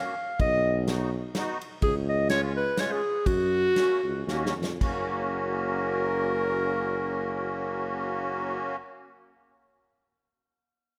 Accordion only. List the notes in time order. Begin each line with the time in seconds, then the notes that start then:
Already playing: A#3 C#4 F#4
0.87 B3 D#4 F#4
1.35 B3 D#4 F#4
2.30 G#3 C#4 F4
2.78 G#3 C#4 F4
3.76 A#3 C#4 F#4
4.27 A#3 C#4 F#4
4.81 A#3 C#4 F#4